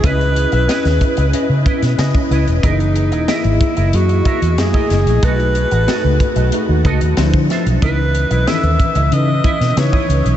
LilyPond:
<<
  \new Staff \with { instrumentName = "Alto saxophone" } { \time 4/4 \key cis \minor \tempo 4 = 92 b'2 r2 | dis'4 e'4 fis'4 gis'4 | b'2 r2 | b'4 e''4 dis''4 cis''4 | }
  \new Staff \with { instrumentName = "Clean electric guitar" } { \time 4/4 \key cis \minor <e' b' dis''>16 r8 <e' b' e''>16 <e' b' dis''>16 r8 <e' b' dis''>16 r8 <e' b' dis''>16 r8. <e' b' dis''>16 r16 | <e' ais' dis''>16 r8 <e' ais' dis''>16 <e' ais' dis''>16 r8 <e' ais' dis''>16 r8 <e' ais' e''>16 r8 <e' ais' dis''>16 r8 | <fis' a' dis''>16 r8 <fis' a' fis''>16 <fis' a' dis''>16 r8 <fis' a' dis''>16 r8 <fis' a' dis''>16 r8. <f' c'' e''>16 r16 | <e' b' dis''>16 r8 <e' b' dis''>16 <e' b' dis''>16 r8 <e' b' dis''>16 r8 <e' b' e''>16 r8 <e' b' dis''>16 r8 | }
  \new Staff \with { instrumentName = "Tine electric piano" } { \time 4/4 \key cis \minor <cis' e' b' dis''>4 <cis' e' b' dis''>4 <cis' e' b' dis''>4 <cis' e' b' dis''>4 | <e ais gis' dis''>4 <ais e' gis' dis''>4 <ais e' gis' dis''>4 <a ais e' gis' dis''>4 | <a dis' fis' b'>4 <a dis' fis' a' b'>4 <a dis' fis' b'>4 <f d' e' c''>4 | <e cis' dis' b'>4 <dis e cis' a' b'>4 <e cis' dis' b'>4 <e cis' dis' b'>4 | }
  \new Staff \with { instrumentName = "Fingered electric bass" } { \clef bass \time 4/4 \key cis \minor cis,8. b,,16 r16 dis,16 r16 cis,16 r16 cis16 r16 b,16 cis16 r16 cis,16 e,,16 | fis,,8. e,,16 r16 gis,,16 r16 fis,,16 fis,8 r16 e,16 fis,16 r16 fis,,16 ais,,16 | b,,8. a,,16 r16 cis,16 r16 b,,16 r16 dis,16 cis,16 dis,16 d,16 d16 r16 b,,16 | cis,8. b,,16 r16 dis,16 r16 cis,16 cis8 r16 b,16 cis16 r16 cis,16 b,,16 | }
  \new DrumStaff \with { instrumentName = "Drums" } \drummode { \time 4/4 <hh bd>16 hh16 hh16 hh16 <hh sn>16 <hh sn>16 <hh bd>16 hh16 hh8 <hh bd>16 <hh sn>16 <hh sn>16 bd16 hh16 hh16 | <hh bd>16 hh16 hh16 hh16 <hh sn>16 hh16 <hh bd>16 hh16 hh16 hh16 <hh bd>16 hh16 <hh sn>16 bd16 <hh sn>16 hh16 | <hh bd>16 hh16 hh16 hh16 <hh sn>8 <hh bd>16 hh16 hh8 <hh bd>16 hh16 <hh sn>16 bd16 <hh sn>16 hh16 | <hh bd>8 hh16 hh16 <hh sn>16 hh16 <hh bd>16 hh16 hh8 <hh bd>16 <hh sn>16 <hh sn>16 bd16 hh16 hh16 | }
>>